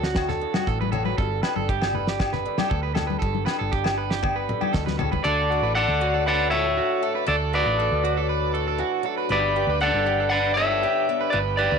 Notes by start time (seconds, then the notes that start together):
Already playing: D2 D3 F#3 A3 D4
0.03 F#4, snare
0.15 A3, kick, snare, low agogo
0.29 A4, snare, low conga
0.41 A2
0.54 F#4, snare, high conga, low agogo
0.67 A1 E3 A4, kick
0.81 B4, high conga
0.92 F#3 A4, low conga, low agogo
1.05 B4, high conga
1.18 G1 G2 A4, kick
1.43 D4 B4, snare, low agogo
1.56 G1 A4, high conga
1.69 G3 G4, kick
1.82 snare, low agogo
1.94 B4, low conga
2.07 G4, snare
2.20 muted steel-string acoustic guitar stroke, kick, snare, low agogo
2.32 B4, snare, low conga
2.46 D3
2.58 G4, snare, high conga, low agogo
2.70 D2 A4, kick
2.83 B4
2.95 A4, snare, low conga, low agogo
3.07 B4, high conga
3.19 G1 G2 A4, kick
3.35 high conga
3.46 D4 B4, snare, low agogo
3.59 G1 A4
3.71 G3 G4, kick
3.84 snare, low agogo
3.98 B4
4.10 G4, snare
4.23 B3, kick, high tom, low agogo
4.36 B4
4.49 D3, mid tom
4.61 G4, high conga, low agogo
4.73 D2 B2 A4, kick, snare
4.86 B4, snare, high conga
4.99 C#3 A4, floor tom, low conga, low agogo
5.12 B4, kick, high conga
5.24 D2 D3 A3 D4 F#4 A4 D5
5.50 D4 F#4
5.62 A1 B4
5.75 A3 A4 D5 F#5
5.88 D2
6.01 F#3 F#4
6.14 A4
6.26 B4 D5 F#5
6.50 A2 A4 C#5 E5
6.77 F#4
7.03 A3 A4
7.15 B4
7.26 D2 A3 A4 D5, muted steel-string acoustic guitar stroke
7.53 D4 F#4 B4 D5
7.66 A1 B4
7.79 A3 A4
7.92 D2
8.04 F#3 F#4
8.17 A4
8.29 B4
8.54 A2 A4
8.68 A4
8.78 E3 F#4
9.03 F#3 A4
9.18 B4
9.29 G1 G2 B3 G4 B4 D5
9.56 D4 G4
9.67 D2 B4
9.81 B3 A4 D5 F#5
9.94 G1
10.06 G3 G4
10.20 A4
10.30 B4 D5 F#5
10.54 D3 A4 C#5 E5
10.70 A4
10.83 D4 G4
11.09 B3
11.21 B4
11.30 G1 B3 B4 D5
11.57 D4 G4 B4 D5
11.71 D2 B4